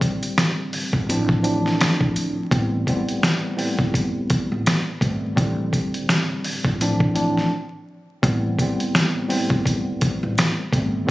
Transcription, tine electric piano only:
0, 0, Header, 1, 2, 480
1, 0, Start_track
1, 0, Key_signature, 0, "minor"
1, 0, Tempo, 714286
1, 1689, Time_signature, 4, 2, 24, 8
1, 7464, End_track
2, 0, Start_track
2, 0, Title_t, "Tine electric piano"
2, 0, Program_c, 0, 4
2, 0, Note_on_c, 0, 45, 91
2, 0, Note_on_c, 0, 50, 89
2, 0, Note_on_c, 0, 55, 83
2, 0, Note_on_c, 0, 60, 102
2, 722, Note_off_c, 0, 45, 0
2, 723, Note_off_c, 0, 50, 0
2, 725, Note_off_c, 0, 55, 0
2, 726, Note_off_c, 0, 60, 0
2, 733, Note_on_c, 0, 45, 90
2, 736, Note_on_c, 0, 53, 82
2, 740, Note_on_c, 0, 60, 84
2, 743, Note_on_c, 0, 62, 101
2, 948, Note_off_c, 0, 45, 0
2, 952, Note_off_c, 0, 53, 0
2, 955, Note_off_c, 0, 60, 0
2, 956, Note_on_c, 0, 45, 89
2, 958, Note_off_c, 0, 62, 0
2, 960, Note_on_c, 0, 53, 80
2, 963, Note_on_c, 0, 60, 77
2, 967, Note_on_c, 0, 62, 94
2, 1634, Note_off_c, 0, 45, 0
2, 1636, Note_off_c, 0, 53, 0
2, 1638, Note_off_c, 0, 60, 0
2, 1640, Note_off_c, 0, 62, 0
2, 1686, Note_on_c, 0, 45, 95
2, 1690, Note_on_c, 0, 55, 88
2, 1693, Note_on_c, 0, 59, 91
2, 1696, Note_on_c, 0, 60, 104
2, 1912, Note_off_c, 0, 45, 0
2, 1913, Note_off_c, 0, 55, 0
2, 1915, Note_off_c, 0, 59, 0
2, 1917, Note_off_c, 0, 60, 0
2, 1933, Note_on_c, 0, 45, 92
2, 1936, Note_on_c, 0, 55, 91
2, 1940, Note_on_c, 0, 59, 86
2, 1944, Note_on_c, 0, 60, 110
2, 2379, Note_off_c, 0, 45, 0
2, 2381, Note_off_c, 0, 55, 0
2, 2382, Note_off_c, 0, 59, 0
2, 2384, Note_off_c, 0, 60, 0
2, 2394, Note_on_c, 0, 45, 94
2, 2397, Note_on_c, 0, 55, 84
2, 2401, Note_on_c, 0, 59, 78
2, 2405, Note_on_c, 0, 60, 103
2, 3297, Note_off_c, 0, 45, 0
2, 3299, Note_off_c, 0, 55, 0
2, 3301, Note_off_c, 0, 59, 0
2, 3303, Note_off_c, 0, 60, 0
2, 3366, Note_on_c, 0, 57, 77
2, 3370, Note_on_c, 0, 55, 70
2, 3373, Note_on_c, 0, 59, 68
2, 3377, Note_on_c, 0, 60, 81
2, 3592, Note_off_c, 0, 57, 0
2, 3594, Note_off_c, 0, 55, 0
2, 3594, Note_on_c, 0, 45, 91
2, 3595, Note_off_c, 0, 59, 0
2, 3595, Note_off_c, 0, 60, 0
2, 3597, Note_on_c, 0, 50, 93
2, 3600, Note_on_c, 0, 55, 86
2, 3603, Note_on_c, 0, 60, 97
2, 4562, Note_off_c, 0, 45, 0
2, 4563, Note_off_c, 0, 50, 0
2, 4565, Note_off_c, 0, 55, 0
2, 4566, Note_off_c, 0, 60, 0
2, 4573, Note_on_c, 0, 45, 88
2, 4577, Note_on_c, 0, 53, 80
2, 4580, Note_on_c, 0, 60, 83
2, 4585, Note_on_c, 0, 62, 99
2, 4790, Note_off_c, 0, 45, 0
2, 4793, Note_off_c, 0, 53, 0
2, 4797, Note_off_c, 0, 60, 0
2, 4798, Note_on_c, 0, 45, 89
2, 4801, Note_off_c, 0, 62, 0
2, 4801, Note_on_c, 0, 53, 82
2, 4805, Note_on_c, 0, 60, 79
2, 4808, Note_on_c, 0, 62, 97
2, 5044, Note_off_c, 0, 45, 0
2, 5045, Note_off_c, 0, 53, 0
2, 5047, Note_off_c, 0, 60, 0
2, 5049, Note_off_c, 0, 62, 0
2, 5527, Note_on_c, 0, 45, 95
2, 5530, Note_on_c, 0, 55, 90
2, 5533, Note_on_c, 0, 59, 96
2, 5537, Note_on_c, 0, 60, 101
2, 5752, Note_off_c, 0, 45, 0
2, 5754, Note_off_c, 0, 55, 0
2, 5755, Note_off_c, 0, 59, 0
2, 5757, Note_off_c, 0, 60, 0
2, 5776, Note_on_c, 0, 45, 91
2, 5779, Note_on_c, 0, 55, 89
2, 5782, Note_on_c, 0, 59, 85
2, 5785, Note_on_c, 0, 60, 108
2, 6220, Note_off_c, 0, 45, 0
2, 6222, Note_off_c, 0, 55, 0
2, 6224, Note_off_c, 0, 59, 0
2, 6225, Note_off_c, 0, 60, 0
2, 6235, Note_on_c, 0, 45, 94
2, 6238, Note_on_c, 0, 55, 85
2, 6242, Note_on_c, 0, 59, 80
2, 6245, Note_on_c, 0, 60, 106
2, 7138, Note_off_c, 0, 45, 0
2, 7139, Note_off_c, 0, 55, 0
2, 7141, Note_off_c, 0, 59, 0
2, 7143, Note_off_c, 0, 60, 0
2, 7207, Note_on_c, 0, 57, 78
2, 7210, Note_on_c, 0, 55, 70
2, 7214, Note_on_c, 0, 59, 69
2, 7218, Note_on_c, 0, 60, 83
2, 7431, Note_off_c, 0, 55, 0
2, 7432, Note_off_c, 0, 57, 0
2, 7433, Note_on_c, 0, 45, 94
2, 7434, Note_off_c, 0, 60, 0
2, 7436, Note_off_c, 0, 59, 0
2, 7436, Note_on_c, 0, 50, 94
2, 7439, Note_on_c, 0, 55, 86
2, 7443, Note_on_c, 0, 60, 101
2, 7464, Note_off_c, 0, 45, 0
2, 7464, Note_off_c, 0, 50, 0
2, 7464, Note_off_c, 0, 55, 0
2, 7464, Note_off_c, 0, 60, 0
2, 7464, End_track
0, 0, End_of_file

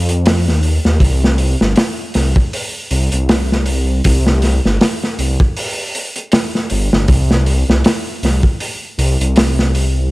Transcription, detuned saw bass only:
0, 0, Header, 1, 2, 480
1, 0, Start_track
1, 0, Key_signature, -3, "minor"
1, 0, Tempo, 759494
1, 635, Time_signature, 4, 2, 24, 8
1, 6391, End_track
2, 0, Start_track
2, 0, Title_t, "Detuned saw bass"
2, 0, Program_c, 0, 39
2, 0, Note_on_c, 0, 41, 98
2, 294, Note_on_c, 0, 39, 78
2, 304, Note_off_c, 0, 41, 0
2, 500, Note_off_c, 0, 39, 0
2, 537, Note_on_c, 0, 39, 101
2, 625, Note_off_c, 0, 39, 0
2, 636, Note_on_c, 0, 36, 89
2, 986, Note_off_c, 0, 36, 0
2, 1017, Note_on_c, 0, 31, 92
2, 1105, Note_off_c, 0, 31, 0
2, 1360, Note_on_c, 0, 36, 98
2, 1478, Note_off_c, 0, 36, 0
2, 1838, Note_on_c, 0, 36, 89
2, 1957, Note_off_c, 0, 36, 0
2, 1975, Note_on_c, 0, 36, 84
2, 2537, Note_off_c, 0, 36, 0
2, 2561, Note_on_c, 0, 36, 96
2, 2908, Note_off_c, 0, 36, 0
2, 2936, Note_on_c, 0, 31, 100
2, 3025, Note_off_c, 0, 31, 0
2, 3277, Note_on_c, 0, 36, 88
2, 3397, Note_off_c, 0, 36, 0
2, 4240, Note_on_c, 0, 31, 96
2, 4358, Note_off_c, 0, 31, 0
2, 4375, Note_on_c, 0, 31, 86
2, 4465, Note_off_c, 0, 31, 0
2, 4480, Note_on_c, 0, 36, 91
2, 4828, Note_off_c, 0, 36, 0
2, 4857, Note_on_c, 0, 36, 96
2, 4945, Note_off_c, 0, 36, 0
2, 5200, Note_on_c, 0, 36, 90
2, 5318, Note_off_c, 0, 36, 0
2, 5675, Note_on_c, 0, 36, 90
2, 5796, Note_off_c, 0, 36, 0
2, 5815, Note_on_c, 0, 36, 84
2, 6377, Note_off_c, 0, 36, 0
2, 6391, End_track
0, 0, End_of_file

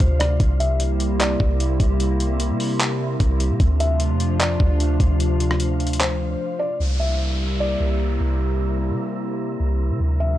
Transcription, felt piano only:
0, 0, Header, 1, 2, 480
1, 0, Start_track
1, 0, Tempo, 400000
1, 480, Time_signature, 4, 2, 24, 8
1, 12458, End_track
2, 0, Start_track
2, 0, Title_t, "Felt piano"
2, 0, Program_c, 0, 0
2, 0, Note_on_c, 0, 72, 89
2, 195, Note_off_c, 0, 72, 0
2, 232, Note_on_c, 0, 74, 90
2, 464, Note_off_c, 0, 74, 0
2, 718, Note_on_c, 0, 76, 79
2, 947, Note_off_c, 0, 76, 0
2, 1444, Note_on_c, 0, 74, 90
2, 2354, Note_off_c, 0, 74, 0
2, 4561, Note_on_c, 0, 76, 88
2, 4788, Note_off_c, 0, 76, 0
2, 5275, Note_on_c, 0, 74, 83
2, 6190, Note_off_c, 0, 74, 0
2, 7198, Note_on_c, 0, 72, 85
2, 7876, Note_off_c, 0, 72, 0
2, 7913, Note_on_c, 0, 74, 90
2, 8144, Note_off_c, 0, 74, 0
2, 8395, Note_on_c, 0, 76, 70
2, 8626, Note_off_c, 0, 76, 0
2, 9122, Note_on_c, 0, 74, 85
2, 10033, Note_off_c, 0, 74, 0
2, 12241, Note_on_c, 0, 76, 81
2, 12458, Note_off_c, 0, 76, 0
2, 12458, End_track
0, 0, End_of_file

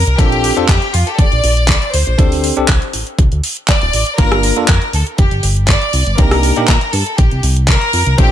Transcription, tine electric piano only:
0, 0, Header, 1, 2, 480
1, 0, Start_track
1, 0, Tempo, 500000
1, 179, Time_signature, 4, 2, 24, 8
1, 7982, End_track
2, 0, Start_track
2, 0, Title_t, "Tine electric piano"
2, 0, Program_c, 0, 4
2, 173, Note_on_c, 0, 60, 84
2, 176, Note_on_c, 0, 62, 77
2, 180, Note_on_c, 0, 65, 78
2, 182, Note_on_c, 0, 69, 96
2, 512, Note_off_c, 0, 60, 0
2, 514, Note_off_c, 0, 62, 0
2, 516, Note_off_c, 0, 65, 0
2, 516, Note_off_c, 0, 69, 0
2, 541, Note_on_c, 0, 60, 87
2, 544, Note_on_c, 0, 62, 80
2, 547, Note_on_c, 0, 65, 78
2, 550, Note_on_c, 0, 69, 94
2, 665, Note_off_c, 0, 60, 0
2, 667, Note_off_c, 0, 62, 0
2, 668, Note_off_c, 0, 65, 0
2, 670, Note_off_c, 0, 69, 0
2, 2091, Note_on_c, 0, 60, 86
2, 2095, Note_on_c, 0, 62, 82
2, 2098, Note_on_c, 0, 67, 79
2, 2101, Note_on_c, 0, 69, 93
2, 2431, Note_off_c, 0, 60, 0
2, 2433, Note_off_c, 0, 62, 0
2, 2434, Note_off_c, 0, 67, 0
2, 2436, Note_off_c, 0, 69, 0
2, 2462, Note_on_c, 0, 60, 81
2, 2465, Note_on_c, 0, 62, 80
2, 2467, Note_on_c, 0, 67, 80
2, 2472, Note_on_c, 0, 69, 93
2, 2585, Note_off_c, 0, 60, 0
2, 2587, Note_off_c, 0, 62, 0
2, 2588, Note_off_c, 0, 67, 0
2, 2590, Note_off_c, 0, 69, 0
2, 4012, Note_on_c, 0, 58, 87
2, 4015, Note_on_c, 0, 62, 79
2, 4017, Note_on_c, 0, 65, 75
2, 4021, Note_on_c, 0, 70, 98
2, 4352, Note_off_c, 0, 58, 0
2, 4353, Note_off_c, 0, 62, 0
2, 4354, Note_off_c, 0, 65, 0
2, 4356, Note_off_c, 0, 70, 0
2, 4380, Note_on_c, 0, 58, 86
2, 4384, Note_on_c, 0, 62, 79
2, 4387, Note_on_c, 0, 65, 76
2, 4391, Note_on_c, 0, 69, 94
2, 4504, Note_off_c, 0, 58, 0
2, 4507, Note_off_c, 0, 62, 0
2, 4508, Note_off_c, 0, 65, 0
2, 4510, Note_off_c, 0, 69, 0
2, 5928, Note_on_c, 0, 58, 89
2, 5932, Note_on_c, 0, 62, 77
2, 5936, Note_on_c, 0, 63, 77
2, 5939, Note_on_c, 0, 67, 96
2, 6270, Note_off_c, 0, 58, 0
2, 6272, Note_off_c, 0, 62, 0
2, 6274, Note_off_c, 0, 63, 0
2, 6275, Note_off_c, 0, 67, 0
2, 6300, Note_on_c, 0, 58, 84
2, 6303, Note_on_c, 0, 62, 78
2, 6307, Note_on_c, 0, 63, 79
2, 6310, Note_on_c, 0, 67, 100
2, 6425, Note_off_c, 0, 58, 0
2, 6426, Note_off_c, 0, 62, 0
2, 6428, Note_off_c, 0, 63, 0
2, 6429, Note_off_c, 0, 67, 0
2, 7851, Note_on_c, 0, 60, 92
2, 7855, Note_on_c, 0, 62, 81
2, 7857, Note_on_c, 0, 65, 84
2, 7860, Note_on_c, 0, 69, 94
2, 7982, Note_off_c, 0, 60, 0
2, 7982, Note_off_c, 0, 62, 0
2, 7982, Note_off_c, 0, 65, 0
2, 7982, Note_off_c, 0, 69, 0
2, 7982, End_track
0, 0, End_of_file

